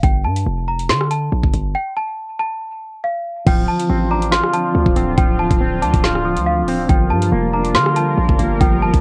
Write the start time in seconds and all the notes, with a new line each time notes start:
0.04 G1 G5, kick, closed hi-hat
0.25 G2 A5
0.36 closed hi-hat
0.46 F1
0.68 A#5
0.79 closed hi-hat
0.89 D3 C6, snare, closed hi-hat
1.01 cross-stick
1.11 A5, closed hi-hat
1.32 A#1
1.43 G1, kick
1.54 G1, closed hi-hat
1.75 G5
1.96 A5
2.39 A5
3.04 F5
3.46 D1 D3 F3 C4 F4 G5, kick, closed hi-hat, crash
3.68 A5
3.79 closed hi-hat
3.89 A1 C4
4.11 D4 A#5
4.22 closed hi-hat
4.31 F4 C6, snare, closed hi-hat
4.43 cross-stick
4.53 F3 A5, closed hi-hat
4.75 D2
4.86 D1, kick
4.96 D1 C4, closed hi-hat
5.18 D1 F3 G5, kick, closed hi-hat
5.39 A5
5.51 D1, kick, closed hi-hat
5.61 C4
5.82 D2 D4 A5, closed hi-hat
5.93 D1, kick, closed hi-hat
6.04 F4, snare
6.15 cross-stick
6.25 F3
6.36 D2, closed hi-hat
6.46 F5
6.63 D1
6.68 C4, open hi-hat
6.89 G1 F3 G3 F4 A#4 G5, kick, closed hi-hat
7.10 G2 A5
7.22 closed hi-hat
7.32 F1 A#3
7.54 D4 A#5
7.65 closed hi-hat
7.75 D3 F4 C6, snare, closed hi-hat
7.86 cross-stick
7.96 F3 A5, closed hi-hat
8.18 A#1
8.29 G1, kick
8.39 G1 A#3, closed hi-hat
8.61 G1 F3 G5, kick, closed hi-hat
8.82 A5
8.93 G1, kick, closed hi-hat